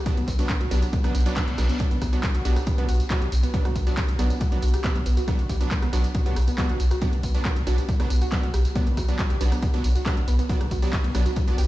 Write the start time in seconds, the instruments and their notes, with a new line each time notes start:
0.06 supersaw synth F#3 B3 D4, kick, closed hi-hat, ride, tambourine
0.17 sub bass B1, synth arpeggio sound B3, closed hi-hat, ride
0.27 sub bass B1, synth arpeggio sound B3, kick, snare, closed hi-hat, open hi-hat, ride, tambourine
0.39 supersaw synth F#3 B3 D4, synth arpeggio sound F#4, closed hi-hat, ride, tambourine
0.48 kick, cross-stick, snare, clap, closed hi-hat, ride, tambourine
0.61 sub bass B1, synth arpeggio sound F#4, closed hi-hat, ride
0.71 sub bass B1, supersaw synth F#3 B3 D4, synth arpeggio sound G4, closed hi-hat, open hi-hat, ride, tambourine
0.82 closed hi-hat, ride, tambourine
0.93 synth arpeggio sound B3, kick, closed hi-hat, ride, tambourine, reverse cymbal
1.04 sub bass B1, supersaw synth F#3 B3 D4, synth arpeggio sound B3, cross-stick, closed hi-hat, open hi-hat, ride
1.15 sub bass B1, synth arpeggio sound B3, snare, closed hi-hat, open hi-hat, ride, tambourine
1.20 closed hi-hat
1.26 supersaw synth F#3 B3 D4, closed hi-hat, ride, tambourine
1.36 supersaw synth F#3 B3 D4, synth arpeggio sound B3, kick, snare, clap, closed hi-hat, ride, tambourine
1.48 sub bass B1, synth arpeggio sound B3, closed hi-hat, ride
1.58 sub bass B1, supersaw synth F#3 B3 D4, cross-stick, closed hi-hat, open hi-hat, ride, tambourine
1.69 synth arpeggio sound B3, closed hi-hat, ride, tambourine
1.80 supersaw synth F#3 B3 D4, kick, closed hi-hat, ride, tambourine
1.90 sub bass B1, synth arpeggio sound B3, closed hi-hat, ride
2.01 sub bass B1, synth arpeggio sound B3, kick, cross-stick, snare, closed hi-hat, open hi-hat, ride, tambourine
2.13 supersaw synth F#3 B3 D4, synth arpeggio sound F#4, closed hi-hat, ride, tambourine
2.23 kick, snare, clap, closed hi-hat, ride, tambourine
2.35 sub bass B1, synth arpeggio sound F#4, snare, closed hi-hat, ride
2.45 sub bass B1, supersaw synth F#3 B3 D4, synth arpeggio sound G4, open hi-hat, ride, tambourine
2.56 cross-stick, closed hi-hat, ride, tambourine
2.67 synth arpeggio sound B3, kick, closed hi-hat, ride, tambourine
2.78 sub bass B1, supersaw synth F#3 B3 D4, synth arpeggio sound B3, closed hi-hat, ride
2.89 sub bass B1, synth arpeggio sound F#4, closed hi-hat, open hi-hat, ride, tambourine
2.94 closed hi-hat
3.00 closed hi-hat, ride, tambourine
3.10 supersaw synth F#3 B3 D4, synth arpeggio sound F#4, kick, cross-stick, snare, clap, closed hi-hat, ride, tambourine
3.22 sub bass B1, synth arpeggio sound G4, closed hi-hat, ride
3.32 sub bass B1, snare, closed hi-hat, open hi-hat, ride, tambourine
3.43 synth arpeggio sound B3, closed hi-hat, ride, tambourine
3.54 supersaw synth F#3 B3 D4, synth arpeggio sound B3, kick, closed hi-hat, ride, tambourine
3.65 sub bass B1, synth arpeggio sound F#4, cross-stick, closed hi-hat, ride
3.76 sub bass B1, kick, closed hi-hat, open hi-hat, ride, tambourine
3.87 supersaw synth F#3 B3 D4, synth arpeggio sound F#4, closed hi-hat, ride, tambourine
3.97 synth arpeggio sound G4, kick, snare, clap, closed hi-hat, ride, tambourine
4.08 sub bass B1, closed hi-hat, ride
4.19 sub bass B1, supersaw synth F#3 B3 D4, synth arpeggio sound B3, cross-stick, closed hi-hat, open hi-hat, ride, tambourine
4.30 synth arpeggio sound B3, closed hi-hat, ride, tambourine
4.41 synth arpeggio sound F#4, kick, closed hi-hat, ride
4.52 sub bass B1, supersaw synth F#3 B3 D4, open hi-hat, ride
4.62 sub bass B1, synth arpeggio sound F#4, closed hi-hat, open hi-hat, ride, tambourine
4.68 closed hi-hat
4.74 synth arpeggio sound G4, cross-stick, closed hi-hat, ride, tambourine
4.84 supersaw synth F#3 B3 D4, kick, snare, clap, closed hi-hat, ride, tambourine
4.95 sub bass B1, synth arpeggio sound B3, closed hi-hat, ride
5.06 sub bass B1, synth arpeggio sound B3, closed hi-hat, open hi-hat, ride, tambourine
5.17 synth arpeggio sound F#4, closed hi-hat, ride, tambourine
5.28 supersaw synth F#3 B3 D4, kick, cross-stick, closed hi-hat, ride, tambourine
5.39 sub bass B1, synth arpeggio sound F#4, closed hi-hat, ride
5.49 sub bass B1, synth arpeggio sound G4, kick, snare, closed hi-hat, open hi-hat, ride, tambourine
5.61 supersaw synth F#3 B3 D4, closed hi-hat, ride, tambourine
5.71 synth arpeggio sound B3, kick, snare, clap, closed hi-hat, ride, tambourine
5.82 sub bass B1, synth arpeggio sound B3, cross-stick, snare, closed hi-hat, ride
5.93 sub bass B1, supersaw synth F#3 B3 D4, synth arpeggio sound F#4, open hi-hat, ride, tambourine
6.04 closed hi-hat, ride, tambourine
6.15 synth arpeggio sound F#4, kick, closed hi-hat, ride, tambourine
6.26 sub bass B1, supersaw synth F#3 B3 D4, synth arpeggio sound G4, closed hi-hat, ride
6.36 sub bass B1, cross-stick, closed hi-hat, open hi-hat, ride, tambourine
6.42 closed hi-hat
6.48 synth arpeggio sound B3, closed hi-hat, ride, tambourine
6.58 supersaw synth F#3 B3 D4, synth arpeggio sound B3, kick, snare, clap, closed hi-hat, ride, tambourine
6.69 sub bass B1, synth arpeggio sound F#4, closed hi-hat, ride
6.79 sub bass B1, snare, closed hi-hat, open hi-hat, ride, tambourine
6.91 synth arpeggio sound F#4, cross-stick, closed hi-hat, ride, tambourine
7.01 supersaw synth F#3 B3 D4, synth arpeggio sound G4, kick, closed hi-hat, ride, tambourine
7.13 sub bass B1, closed hi-hat, ride
7.23 sub bass B1, synth arpeggio sound B3, kick, closed hi-hat, open hi-hat, ride, tambourine
7.35 supersaw synth F#3 B3 D4, synth arpeggio sound B3, closed hi-hat, ride, tambourine
7.45 synth arpeggio sound F#4, kick, cross-stick, snare, clap, closed hi-hat, ride, tambourine
7.56 sub bass B1, closed hi-hat, ride
7.67 sub bass B1, supersaw synth F#3 B3 D4, synth arpeggio sound F#4, closed hi-hat, open hi-hat, ride, tambourine
7.78 synth arpeggio sound G4, closed hi-hat, ride, tambourine
7.89 kick, closed hi-hat, ride, tambourine
8.00 sub bass B1, supersaw synth F#3 B3 D4, synth arpeggio sound B3, cross-stick, open hi-hat, ride
8.10 sub bass B1, synth arpeggio sound B3, closed hi-hat, open hi-hat, ride, tambourine
8.16 closed hi-hat
8.22 synth arpeggio sound F#4, closed hi-hat, ride, tambourine
8.32 supersaw synth F#3 B3 D4, kick, snare, clap, closed hi-hat, ride
8.43 sub bass B1, synth arpeggio sound F#4, closed hi-hat, ride
8.54 sub bass B1, synth arpeggio sound G4, cross-stick, closed hi-hat, open hi-hat, ride, tambourine
8.65 closed hi-hat, ride, tambourine
8.75 supersaw synth F#3 B3 D4, synth arpeggio sound B3, kick, closed hi-hat, ride, tambourine
8.86 sub bass B1, synth arpeggio sound B3, closed hi-hat, ride
8.97 sub bass B1, synth arpeggio sound F#4, kick, cross-stick, snare, closed hi-hat, open hi-hat, ride, tambourine
9.08 supersaw synth F#3 B3 D4, closed hi-hat, ride, tambourine
9.19 synth arpeggio sound F#4, kick, snare, clap, closed hi-hat, ride, tambourine
9.30 sub bass B1, synth arpeggio sound G4, snare, closed hi-hat, ride
9.40 sub bass B1, supersaw synth F#3 B3 D4, open hi-hat, ride, tambourine
9.52 synth arpeggio sound B3, cross-stick, closed hi-hat, ride, tambourine
9.62 synth arpeggio sound B3, kick, closed hi-hat, ride, tambourine
9.74 sub bass B1, supersaw synth F#3 B3 D4, synth arpeggio sound F#4, closed hi-hat, ride
9.84 sub bass B1, closed hi-hat, open hi-hat, ride, tambourine
9.90 closed hi-hat
9.95 synth arpeggio sound F#4, closed hi-hat, ride, tambourine
10.05 supersaw synth F#3 B3 D4, synth arpeggio sound G4, kick, cross-stick, snare, clap, closed hi-hat, ride, tambourine
10.17 sub bass B1, closed hi-hat, ride
10.28 sub bass B1, synth arpeggio sound B3, snare, closed hi-hat, open hi-hat, ride, tambourine
10.39 synth arpeggio sound B3, closed hi-hat, ride, tambourine
10.49 supersaw synth F#3 B3 D4, synth arpeggio sound F#4, kick, closed hi-hat, ride, tambourine
10.61 sub bass B1, cross-stick, closed hi-hat, ride
10.71 sub bass B1, synth arpeggio sound F#4, kick, closed hi-hat, open hi-hat, ride, tambourine
10.82 supersaw synth F#3 B3 D4, synth arpeggio sound G4, closed hi-hat, ride, tambourine
10.93 kick, snare, clap, closed hi-hat, ride, tambourine
11.04 sub bass B1, synth arpeggio sound B3, closed hi-hat, ride
11.14 sub bass B1, supersaw synth F#3 B3 D4, synth arpeggio sound B3, cross-stick, closed hi-hat, open hi-hat, ride, tambourine
11.26 synth arpeggio sound F#4, closed hi-hat, ride, tambourine
11.36 kick, closed hi-hat, ride, tambourine
11.48 sub bass B1, supersaw synth F#3 B3 D4, synth arpeggio sound F#4, open hi-hat, ride
11.58 sub bass B1, synth arpeggio sound G4, closed hi-hat, open hi-hat, ride, tambourine
11.64 closed hi-hat